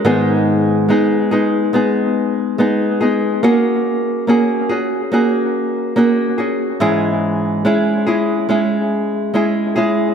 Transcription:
\new Staff \with { instrumentName = "Nylon-string guitar" } { \time 4/4 \key gis \dorian \tempo 4 = 71 <gis, dis gis b dis' gis'>4 <gis b dis' gis'>8 <gis b dis' gis'>8 <gis b dis' gis'>4 <gis b dis' gis'>8 <gis b dis' gis'>8 | <ais cis' fis' gis'>4 <ais cis' fis' gis'>8 <cis' fis' gis'>8 <ais cis' fis' gis'>4 <ais cis' fis' gis'>8 <cis' fis' gis'>8 | <gis, e gis cis' e' gis'>4 <gis cis' e' gis'>8 <gis cis' e' gis'>8 <gis cis' e' gis'>4 <gis cis' e' gis'>8 <gis cis' e' gis'>8 | }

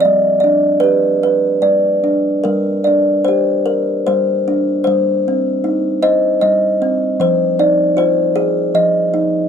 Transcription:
\new Staff \with { instrumentName = "Kalimba" } { \time 3/4 \key g \phrygian \tempo 4 = 76 << { d''8 d''8 b'4 d''4 | bes'8 d''8 c''8 r8 c''4 | c''4. ees''8 ees''4 | c''8 d''8 c''4 ees''4 | } \\ { g8 d'8 g'8 b'8 g8 d'8 | g8 d'8 g'8 bes'8 g8 d'8 | g8 c'8 ees'8 c''8 g8 c'8 | f8 ees'8 f'8 aes'8 f8 ees'8 | } >> }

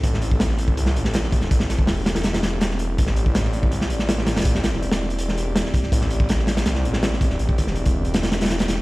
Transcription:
<<
  \new Staff \with { instrumentName = "Analog synth pad" } { \time 4/4 \key a \minor \tempo 4 = 163 << { a'1~ | a'1 | d''1~ | d''1~ |
d''1~ | d''1 | } \\ { <c' e' g'>1~ | <c' e' g'>1~ | <c' e' g'>1~ | <c' e' g'>1~ |
<c' e' g'>1~ | <c' e' g'>1 | } >> }
  \new Staff \with { instrumentName = "Detuned saw bass" } { \clef bass \time 4/4 \key a \minor a,,2 c,8 a,,4~ a,,16 e,,16 | a,,8. e,,8 e,,4~ e,,16 e,,4. | a,,2 c,8 a,,4~ a,,16 e,,16 | a,,8. e,,8 e,,2 r8. |
a,,2 c,8 a,,4~ a,,16 e,,16 | a,,8. e,,8 e,,4.~ e,,16 e,,8 e,,8 | }
  \new DrumStaff \with { instrumentName = "Drums" } \drummode { \time 4/4 <hh bd>16 sn16 hh16 bd16 <hh sn>16 sn16 hh16 bd16 hh16 sn16 hh16 sn16 <hh sn>16 sn16 <hh bd>16 sn16 | <hh bd>16 sn16 <hh sn>16 bd16 <hho sn>8 <hh sn>16 <hh sn>16 <hh sn>16 <hh sn>16 <hh sn>8 <hh sn>16 sn16 hh8 | <hh bd>16 sn16 hh16 bd16 <hh sn>16 sn16 hh16 bd16 hh16 sn16 hh16 sn16 <hh sn>16 sn16 <hh sn>16 <hh sn>32 <hh sn>32 | <hh bd>16 sn16 <hh sn>16 sn16 hh16 <hh sn>16 sn16 hh16 hh16 sn16 hh8 <hh sn>16 sn16 <hh bd>16 sn16 |
<hh bd>16 sn16 hh16 bd16 <hh sn>16 sn16 <hh sn>16 <hh sn>16 <hh sn>16 sn16 hh16 sn16 <hh sn>16 sn16 <hh bd>16 sn16 | hh16 bd16 <hh bd>16 sn16 hh16 <hh bd>8 hh16 <hh sn>16 <hh sn>16 <hh sn>16 <hh sn>32 <hh sn>32 <hh sn>16 <hh sn>16 <hh sn>8 | }
>>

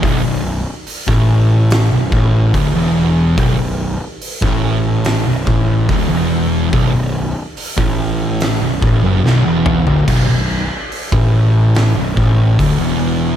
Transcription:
<<
  \new Staff \with { instrumentName = "Distorted electric guitar" } { \clef bass \time 4/4 \key b \minor \tempo 4 = 72 b,,16 b,,8 r8 a,4 b,,16 a,8 d,16 e,8. | b,,16 b,,8 r8 a,4 b,,16 a,8 d,16 e,8. | b,,16 b,,8 r8 a,4 b,,16 a,16 fis,16 b,,16 e,8 d,16 | b,,16 b,,8 r8 a,4 b,,16 a,8 d,16 e,8. | }
  \new Staff \with { instrumentName = "Distorted electric guitar" } { \clef bass \time 4/4 \key b \minor b,,16 b,,8 r8 a,4 b,,16 a,8 d,16 e,8. | b,,16 b,,8 r8 a,4 b,,16 a,8 d,16 e,8. | b,,16 b,,8 r8 a,4 b,,16 a,16 fis,16 b,,16 e,8 d,16 | b,,16 b,,8 r8 a,4 b,,16 a,8 d,16 e,8. | }
  \new Staff \with { instrumentName = "Picked electric bass" } { \clef bass \time 4/4 \key b \minor b,,,16 b,,,8 r8 a,,4 b,,,16 a,,8 d,,16 e,,8. | b,,,16 b,,,8 r8 a,,4 b,,,16 a,,8 d,,16 e,,8. | b,,,16 b,,,8 r8 a,,4 b,,,16 a,,16 fis,,16 b,,,16 e,,8 d,,16 | b,,,16 b,,,8 r8 a,,4 b,,,16 a,,8 d,,16 e,,8. | }
  \new DrumStaff \with { instrumentName = "Drums" } \drummode { \time 4/4 <hho bd>4 hho16 <bd sn>8. <hho sn>8 bd8 <hho bd>4 | <hho bd>4 hho16 <bd sn>8. <hho sn>8 bd8 <hho bd>4 | <hho bd>4 hho16 bd8. <hho sn>8 bd8 sn8 toml16 tomfh16 | <cymc hho bd>4 hho16 bd8. <hho sn>8 bd8 <hho bd>4 | }
>>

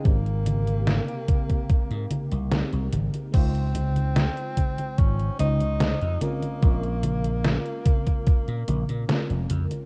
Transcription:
<<
  \new Staff \with { instrumentName = "FM electric piano" } { \time 4/4 \key des \lydian \tempo 4 = 73 <aes c' ees' g' bes'>2. <aes c' ees' g' bes'>16 r8. | <des aes ees' f' c''>2~ <des aes ees' f' c''>8 <aes des' ees' f' c''>4 <aes c' des' f' bes'>8 | <aes c' des' f' bes'>2. <aes c' des' f' bes'>16 r8. | }
  \new Staff \with { instrumentName = "Tenor saxophone" } { \time 4/4 \key des \lydian bes2. r4 | c'2 des'8 ees'4 bes8~ | bes2.~ bes8 r8 | }
  \new Staff \with { instrumentName = "String machine" } { \time 4/4 \key des \lydian <c bes g'>1 | r1 | r1 | }
  \new Staff \with { instrumentName = "Slap bass" } { \clef bass \time 4/4 \key des \lydian aes,,4~ aes,,16 r4 aes,16 r16 c,16 r16 c,16 aes,,16 r16 | des,4~ des,16 r8. aes,,16 r16 des,8. f,16 r8 | bes,,4~ bes,,16 r4 bes,16 bes,,16 bes,16 r16 f,,16 f,16 r16 | }
  \new DrumStaff \with { instrumentName = "Drums" } \drummode { \time 4/4 <cgho hh bd>16 hh16 <cgho hh>16 <cgho hh>16 <cgho hh sn>16 hh16 <cgho hh bd>16 <cgho hh bd>16 <cgho hh bd>16 hh16 <cgho hh>16 <cgho hh>16 <cgho hh sn>16 hh16 <cgho hh>16 <cgho hh>16 | <cgho cymc hh bd>16 hh16 <cgho hh>16 <cgho hh>16 <cgho hh sn>16 hh16 <cgho hh bd>16 <cgho hh>16 <cgho hh bd>16 hh16 <cgho hh>16 <cgho hh>16 <cgho hh sn>16 hh16 <cgho hh>16 <cgho hh>16 | <cgho hh bd>16 hh16 <cgho hh>16 <cgho hh>16 <cgho hh sn>16 hh16 <cgho hh bd>16 <cgho hh bd>16 <cgho hh bd>16 hh16 <cgho hh>16 <cgho hh>16 <cgho hh sn>16 hh16 <cgho hh>16 <cgho hh>16 | }
>>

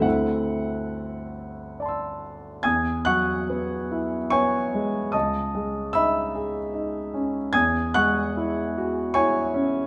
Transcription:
<<
  \new Staff \with { instrumentName = "Grand piano" } { \time 3/4 \key e \major \tempo 4 = 73 << { fis''2~ fis''8 r8 | <gis'' dis''' gis'''>8 <fis'' cis''' fis'''>4. <cis'' gis'' cis'''>4 | <dis'' a'' dis'''>4 <e'' b'' e'''>2 | <gis'' dis''' gis'''>8 <fis'' cis''' fis'''>4. <cis'' gis'' cis'''>4 | } \\ { r2 <d'' a'' c''' e'''>4 | e,8 fis8 b8 e'8 b8 gis8 | cis,8 gis8 dis'8 gis'8 dis'8 cis'8 | e,8 gis8 e'8 fis'8 e'8 cis'8 | } >> }
  \new Staff \with { instrumentName = "Grand piano" } { \time 3/4 \key e \major <d, d a c' e'>2. | r2. | r2. | r2. | }
>>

